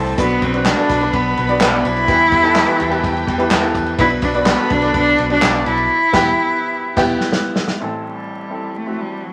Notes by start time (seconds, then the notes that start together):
Already playing: C2 C3 A3 C4 E4 A4 B4 C5 D5 A5
0.06 ride
0.17 B1 B2 F#3 B3 D4 F#4 B4 B5, kick, hi-hat pedal, ride
0.21 B3
0.30 ride
0.41 B1 F#3 B3 C4 D4 F#4, kick, ride
0.53 B3 D4 F#4 B4, ride
0.65 D4, snare, clap, ride
0.77 B3 D4 F#4 A4, ride
0.89 B1 F#3 B3 D4 F#4, kick, snare, ride
1.00 B3 D4 F#4 B4, ride
1.13 B1 B3, kick, ride
1.36 B1 F#3 B3 D4 F#4, ride
1.48 B3 D4 F#4 D5, ride
1.60 B1, snare, clap, ride
1.73 B3 D4 F#4 D5
1.85 B1 E4, ride
1.97 ride
2.08 E2 E3 G3 B3 E4 G4 B4 G5, kick, ride
2.31 E2 E3 G3 G4, kick, ride
2.43 B3 E4 G4 A4, ride
2.55 snare, clap, ride
2.66 B3 E4 G4 B4, ride
2.79 E2 E3 G3 E4 G4, ride
2.90 B3 E4 G4 B4, ride
3.04 E2, kick, ride
3.17 ride
3.27 E2 E3 G3 E4 G4, kick, ride
3.38 B3 E4 G4 B4, ride
3.50 E2, snare, clap, ride
3.62 E3 G3 B3 E4 G4 A4
3.75 E2, kick, ride
3.86 ride
3.98 B1 B2 F#3 B3 D4 E4 F#4 B4 B5, kick, ride
4.10 ride
4.22 B1 F#3 B3 D4 F#4, kick, ride
4.34 B3 D4 F#4 D5, ride
4.46 B3, snare, clap, ride
4.58 B3 D4 F#4 A4
4.70 B1 F#3 B3 D4 F#4, kick, ride
4.82 B3 D4 F#4 A4, ride
4.94 B1 D4, kick, ride
5.17 B1 F#3 B3 D4 F#4, ride
5.29 B3 D4 F#4 D5, ride
5.41 B1 A4 A5, snare, clap, ride
5.54 B3 D4 F#4 D5, ride
5.66 B1 E4, ride
5.77 ride
6.13 E1 E3 G3 B3 E4 G4 B4 G5, kick, snare, crash
6.96 E1 E3 G3 B3 E4 G4 B4 G5, kick, snare, crash
7.20 snare
7.33 snare
7.56 snare
7.68 snare
7.80 A1 A2 C4 E4 A4
8.05 G3
8.50 C4 E4 A4
8.77 A3
8.86 C4 E4 F#4
9.00 G3
9.24 F#3